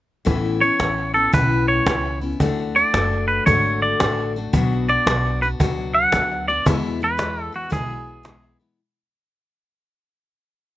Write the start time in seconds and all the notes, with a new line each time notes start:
0.25 A1 A2 E3 B3 C#4 E4, cajon bass, cajon slap
0.44 cajon slap
0.61 C#4 E4 C#5, cajon slap
0.79 A1 E3 B3 C#4 E4, cajon slap
1.14 B3 C#4 E4 A4, cajon slap
1.32 B1 A2 E3 B3 C#4 E4 B4, cajon bass, cajon slap
1.51 cajon slap
1.68 C#5, cajon slap
1.86 C#2 E3 B3 C#4 E4, cajon slap
2.21 B3 C#4 E4, cajon slap
2.31 cajon slap
2.40 D2 D3 A3 D4 F#4, cajon bass, cajon slap
2.59 cajon slap
2.76 A3 D4 D5, cajon slap
2.94 F#1 D3 A3 D4 F#4, cajon slap
3.28 B4, cajon slap
3.46 G#1 D3 A3 D4 F#4 C#5, cajon bass, cajon slap
3.65 cajon slap
3.82 D5, cajon slap
4.00 A1 D3 A3 D4 F#4, cajon slap
4.36 A3 D4 F#4, cajon slap
4.53 B1 B2 F#3 B3 D4 F#4, cajon bass, cajon slap
4.71 cajon slap
4.88 B3 D4 F#4 D5, cajon slap
5.06 B1 F#3 B3 D4 F#4, cajon slap
5.42 B3 D4 F#4 B4, cajon slap
5.60 C#2 B2 F#3 B3 D4 F#4, cajon bass, cajon slap
5.78 cajon slap
5.95 F#5, cajon slap
6.12 D2 F#3 B3 D4 F#4, cajon slap
6.48 B3 D4 F#4 D5, cajon slap
6.66 E2 B2 E3 G#3 B3 E4, cajon bass, cajon slap
6.83 cajon slap
7.00 E3 G#3 B3 E4 B4, cajon slap
7.17 E3 G#3 B3 E4, cajon slap
7.52 E3 G#3 B3 E4 F#4, cajon slap
7.63 cajon slap
7.70 B1 E2 B2 E3 G#3 B3 E4 G#4, cajon bass, cajon slap
7.89 cajon slap
8.07 cajon slap
8.23 E3 G#3 B3 E4, cajon slap
8.60 E3 G#3 B3 E4, cajon slap